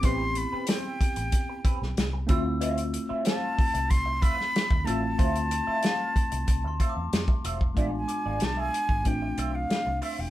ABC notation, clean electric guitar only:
X:1
M:4/4
L:1/16
Q:1/4=93
K:Ddor
V:1 name="Clean electric guitar"
[CGB] z2 [CGB] [CGc]2 z4 [CGB] z3 [Fce] z | [Fce] z2 [Fce] [Fcf]2 z4 [Fce] z3 [Fce] z | [Fce] z2 [Fce] [Fcf]2 z4 [Fce] z3 [Fce] z | [F^Gd] z2 [FGd] z [FGe] z4 [Fce] z3 [Fce] z |]